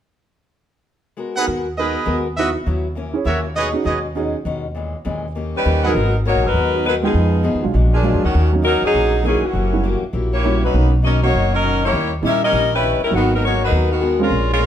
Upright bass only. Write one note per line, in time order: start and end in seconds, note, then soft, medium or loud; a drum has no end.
1.47 1.94 D#2 medium
2.07 2.54 D#2 medium
2.66 3.14 D#2 medium
3.25 3.73 D#2 medium
3.85 4.33 D#2 medium
4.45 4.93 D#2 medium
5.06 5.53 D#2 medium
5.66 5.93 D#2 medium
5.95 6.32 G#1 medium
6.35 6.44 A#1 medium
6.45 6.53 G1 medium
6.54 7.11 D#2 medium
7.14 7.52 F2 medium
7.54 7.63 D#2 medium
7.64 7.74 B1 medium
7.74 8.11 A#1 medium
8.14 8.24 F2 medium
8.25 8.34 D2 medium
8.35 8.79 D#2 medium
8.82 8.93 E2 medium
8.94 9.39 A#1 medium
9.42 muted upright bass stroke soft
9.53 9.98 F#1 medium
10.02 muted upright bass stroke soft
10.13 10.70 A#1 medium
10.74 11.30 B1 medium
11.34 11.90 F#1 medium
11.93 12.20 D#2 medium
12.23 12.50 A#2 medium
12.52 12.97 A#1 medium
13.00 muted upright bass stroke soft
13.12 13.69 G#1 medium
13.71 14.28 D#2 medium
14.31 14.66 A#1 medium